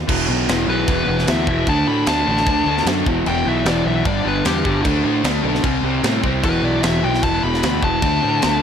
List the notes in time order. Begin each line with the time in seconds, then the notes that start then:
0.07 E1 E2 B2 E3, kick, crash
0.28 B1 E2 B2 E3
0.48 E1 E2 B2 E3, snare, crash
0.67 B1 E2 B2 E3 B4
0.88 E1 E2 B2 E3, kick, crash
1.08 E1 E2 B2 E3
1.19 snare
1.27 D2 E2 B2 E3 E5, snare, crash
1.47 E1 E2 B2 E3 E5, kick
1.67 D2 D3 A3 D4 A5, kick, crash
1.87 A2 D3 A3 D4 B5
2.06 D2 D3 A3 D4 A5, snare, crash
2.27 A1 D3 A3 D4
2.37 snare
2.47 D2 D3 A3 D4, kick, crash
2.66 D2 D3 A3 D4
2.78 snare
2.85 F#2 D3 A3 D4, snare, crash
3.05 E1 E2 B2 E3, kick
3.26 E1 E2 B2 E3 G5, crash
3.45 B1 E2 B2 E3 E5
3.65 E1 E2 B2 E3 D5, snare, crash
3.85 B1 E2 B2 E3 E5
4.05 G1 G2 D3 G3 D5, kick, crash
4.24 G1 G2 D3 G3 B4
4.45 E2 G2 D3 G3 G4, snare, crash
4.65 G1 G2 D3 G3, kick
4.84 D2 D3 A3 D4, kick, crash
5.04 A2 D3 A3 D4
5.23 D2 D3 A3 D4, snare, crash
5.44 B1 D3 A3 D4
5.55 snare
5.63 C2 C3 G3 C4, kick, crash
5.83 C2 C3 G3 C4
6.03 A2 C3 G3 C4, snare, crash
6.23 C2 C3 G3 C4, kick
6.43 E1 E2 B2 E3 B4, kick, crash
6.62 B1 E2 B2 E3 D5
6.82 E1 E2 B2 E3 E5, snare, crash
7.03 B1 E2 B2 E3 G5
7.15 snare
7.22 E1 E2 B2 E3 A5, kick, crash
7.43 E1 E2 B2 E3 B5
7.54 snare
7.63 D2 E2 B2 E3, snare, crash
7.82 E1 E2 B2 E3 A5, kick
8.02 D2 D3 A3 D4, kick, crash
8.22 A2 D3 A3 D4
8.42 D2 D3 A3 D4, snare, crash